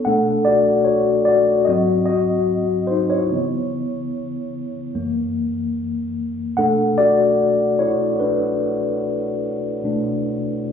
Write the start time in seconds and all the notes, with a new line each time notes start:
0.05 B2 A3 D4 A4 F#5
0.45 F#4 D5
0.84 F#4 C#5
1.25 F#4 D5
1.65 G#2 F#3 C4 D#5
1.69 F#4
2.06 F#4 D#5
2.87 D#4 C5
3.10 E4 C#5
3.31 C#3 E3 B3
4.94 F#2 E3 A#3
6.57 B2 A3 D4 A4 F#5
6.98 F#4 D5
7.79 E4 C#5
8.20 D4 B4
9.83 B2 A3 D4